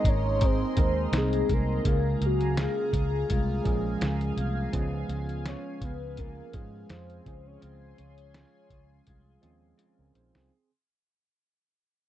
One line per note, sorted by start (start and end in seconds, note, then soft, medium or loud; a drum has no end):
0.00 0.77 G#3 medium
0.00 0.77 A#3 medium
0.00 0.77 C4 medium
0.00 0.78 D#4 medium
0.00 7.23 G#4 medium
0.00 0.79 A#4 loud
0.00 1.83 D#5 medium
0.00 1.81 A#5 medium
0.00 1.82 C6 medium
0.04 0.62 G#1 loud
0.04 0.40 D#4 medium
0.04 0.41 A#4 medium
0.04 kick loud
0.04 closed hi-hat medium
0.08 0.47 C#5 loud
0.40 0.76 G#3 medium
0.40 0.77 C4 medium
0.40 0.77 D#4 medium
0.40 0.76 A#4 medium
0.40 kick loud
0.40 closed hi-hat loud
0.45 0.79 C5 loud
0.77 1.06 D#2 medium
0.77 1.46 G#3 medium
0.77 1.47 A#3 medium
0.77 1.47 C4 medium
0.77 1.13 C4 soft
0.77 1.47 D#4 medium
0.77 1.13 D#4 medium
0.77 1.13 A#4 medium
0.77 1.47 A#4 medium
0.77 kick loud
0.77 closed hi-hat medium
0.82 1.13 C5 loud
1.12 1.42 C2 loud
1.12 1.49 G#3 medium
1.12 1.50 C4 medium
1.12 1.50 D#4 medium
1.12 1.49 A#4 loud
1.12 snare loud
1.12 closed hi-hat medium
1.18 1.54 G#4 loud
1.33 closed hi-hat medium
1.49 1.78 C2 loud
1.49 1.86 C4 soft
1.49 1.86 D#4 soft
1.49 1.86 A#4 medium
1.49 2.27 A#4 loud
1.49 kick medium
1.49 closed hi-hat medium
1.84 2.14 C#2 loud
1.84 2.78 C#3 medium
1.84 2.21 C#3 medium
1.84 2.79 G#3 medium
1.84 2.22 G#3 medium
1.84 2.79 A#3 medium
1.84 2.21 A#3 medium
1.84 2.80 C#4 medium
1.84 2.23 F4 medium
1.84 2.80 G#4 medium
1.84 10.47 F5 medium
1.84 7.23 G#5 medium
1.84 4.71 A#5 medium
1.84 kick loud
1.84 closed hi-hat loud
2.21 2.66 C#2 loud
2.21 2.57 G#3 medium
2.21 2.57 A#3 medium
2.21 closed hi-hat medium
2.26 2.60 F#4 loud
2.41 closed hi-hat medium
2.57 2.93 C#3 medium
2.57 2.94 G#3 medium
2.57 2.93 A#3 loud
2.57 2.93 F4 medium
2.57 snare loud
2.57 closed hi-hat loud
2.62 4.36 G#4 medium
2.93 3.22 C#2 loud
2.93 3.28 G#3 soft
2.93 3.29 A#3 soft
2.93 3.30 F4 medium
2.93 kick loud
2.93 closed hi-hat medium
3.29 3.59 C2 loud
3.29 3.66 G#3 medium
3.29 3.65 A#3 medium
3.29 3.63 F4 medium
3.29 kick loud
3.29 closed hi-hat medium
3.64 3.95 A#1 loud
3.64 4.34 F3 medium
3.64 4.35 G#3 medium
3.64 4.00 G#3 medium
3.64 4.35 A#3 medium
3.64 4.01 A#3 medium
3.64 4.35 C#4 medium
3.64 4.01 F4 medium
3.64 4.36 G#4 loud
3.64 kick loud
3.64 closed hi-hat medium
4.01 4.30 C#2 loud
4.01 4.37 C#3 medium
4.01 4.38 G#3 loud
4.01 4.38 A#3 loud
4.01 4.36 F4 loud
4.01 snare loud
4.01 closed hi-hat medium
4.21 closed hi-hat medium
4.37 4.66 C2 loud
4.37 4.73 G#3 medium
4.37 4.74 A#3 medium
4.37 4.74 F4 medium
4.37 closed hi-hat medium
4.73 5.03 C#2 loud
4.73 5.09 C#3 medium
4.73 5.67 F3 loud
4.73 5.68 G#3 medium
4.73 5.10 G#3 medium
4.73 5.68 B3 medium
4.73 5.10 B3 loud
4.73 5.68 C#4 medium
4.73 5.08 F4 loud
4.73 5.68 G#4 loud
4.73 kick loud
4.73 closed hi-hat medium
5.09 5.54 C#2 loud
5.09 5.46 G#3 medium
5.09 5.47 B3 medium
5.09 5.46 F4 medium
5.09 closed hi-hat medium
5.29 closed hi-hat medium
5.46 5.83 C#3 medium
5.46 5.83 G#3 medium
5.46 5.82 B3 medium
5.46 5.80 F4 medium
5.46 5.85 C#5 loud
5.46 snare loud
5.46 closed hi-hat loud
5.81 6.40 C#2 loud
5.81 6.18 G#3 soft
5.81 6.19 B3 medium
5.81 6.18 F4 medium
5.81 6.20 B4 loud
5.81 kick loud
5.81 closed hi-hat medium
6.17 6.54 C#3 medium
6.17 6.55 G#3 medium
6.17 6.54 B3 medium
6.17 6.52 F4 medium
6.17 6.55 A#4 loud
6.17 kick loud
6.17 closed hi-hat medium
6.53 6.83 G#2 loud
6.53 7.23 F3 medium
6.53 7.23 G#3 medium
6.53 6.89 G#3 medium
6.53 6.91 B3 medium
6.53 7.24 C#4 medium
6.53 6.90 F4 medium
6.53 6.91 G#4 medium
6.53 7.24 G#4 medium
6.53 kick loud
6.53 closed hi-hat medium
6.89 7.19 F2 loud
6.89 7.26 C#3 medium
6.89 7.26 G#3 medium
6.89 7.23 F4 medium
6.89 7.48 C5 loud
6.89 snare loud
6.89 closed hi-hat medium
7.10 closed hi-hat medium
7.25 7.55 C#2 loud
7.25 8.42 F3 medium
7.25 8.43 G#3 medium
7.25 7.60 G#3 soft
7.25 7.61 C4 medium
7.25 8.43 C#4 medium
7.25 7.62 F4 medium
7.25 10.48 G#4 medium
7.25 8.43 G#4 medium
7.25 10.48 G#5 medium
7.25 10.48 C6 medium
7.25 kick loud
7.25 closed hi-hat medium
7.47 7.63 C#5 loud
7.61 7.92 C#2 loud
7.61 7.98 C#3 medium
7.61 7.98 G#3 medium
7.61 7.98 C4 medium
7.61 7.97 F4 medium
7.61 7.99 C5 loud
7.61 closed hi-hat medium
7.98 8.44 C#2 loud
7.98 8.34 G#3 soft
7.98 8.34 F4 medium
7.98 9.43 C#5 loud
7.98 closed hi-hat medium
8.18 closed hi-hat medium
8.34 8.71 C#3 medium
8.34 8.71 G#3 medium
8.34 8.70 F4 medium
8.34 snare loud
8.34 closed hi-hat loud
8.70 8.99 C#2 medium
8.70 9.06 G#3 soft
8.70 9.07 F4 medium
8.70 kick loud
8.70 closed hi-hat medium
9.07 9.36 C2 loud
9.07 9.43 G#3 medium
9.07 9.41 F4 medium
9.07 kick loud
9.07 closed hi-hat medium
9.41 9.72 D#2 medium
9.41 10.12 F3 medium
9.41 10.12 G#3 medium
9.41 9.77 G#3 medium
9.41 9.79 C4 medium
9.41 9.77 C4 medium
9.41 9.79 C#4 medium
9.41 9.78 F4 medium
9.41 9.80 G#4 loud
9.41 closed hi-hat medium
9.78 10.15 C#3 loud
9.78 10.15 G#3 loud
9.78 10.14 C4 loud
9.78 10.12 F4 loud
9.78 closed hi-hat loud
9.99 10.12 C#2 medium
9.99 10.15 C#4 medium
9.99 10.15 A#4 medium
10.13 10.31 A#1 loud
10.13 10.52 G#3 medium
10.13 10.51 C4 medium
10.13 10.35 D#4 medium
10.13 10.50 F4 medium
10.13 10.34 C5 medium
10.13 closed hi-hat medium
10.35 10.48 C2 medium
10.35 10.70 C4 medium
10.35 10.70 G#4 medium
10.35 snare loud